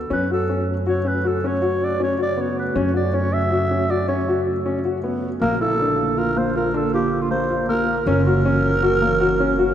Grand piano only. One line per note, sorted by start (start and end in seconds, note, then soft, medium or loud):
0.10 0.23 C#4 medium
0.31 0.43 F#4 medium
0.49 0.73 C#4 medium
0.87 0.99 F#4 medium
1.05 1.17 C#4 medium
1.25 1.37 F#4 medium
1.44 1.56 C#4 medium
1.62 1.86 F#4 medium
2.00 2.12 C#4 medium
2.18 2.31 F#4 medium
2.37 2.62 B3 medium
2.76 2.88 C#4 medium
2.94 3.06 F#4 medium
3.13 3.38 C#4 medium
3.51 3.63 F#4 medium
3.71 3.83 C#4 medium
3.90 4.02 F#4 medium
4.08 4.21 C#4 medium
4.28 4.52 F#4 medium
4.66 4.78 C#4 medium
4.85 4.97 F#4 medium
5.04 5.28 B3 medium
5.42 5.54 A#3 medium
5.61 5.73 E4 medium
5.80 6.04 D4 medium
6.17 6.29 F4 medium
6.36 6.48 A#3 medium
6.56 6.67 F4 medium
6.74 6.86 D4 medium
6.93 7.17 F4 medium
7.31 7.43 A#3 medium
7.50 7.62 F4 medium
7.69 7.93 A#3 medium
8.07 8.19 C#4 medium
8.26 8.38 F#4 medium
8.45 8.69 C#4 medium
8.83 8.95 F#4 medium
9.02 9.14 A#3 medium
9.20 9.33 F#4 medium
9.40 9.52 C#4 medium
9.59 9.74 F#4 medium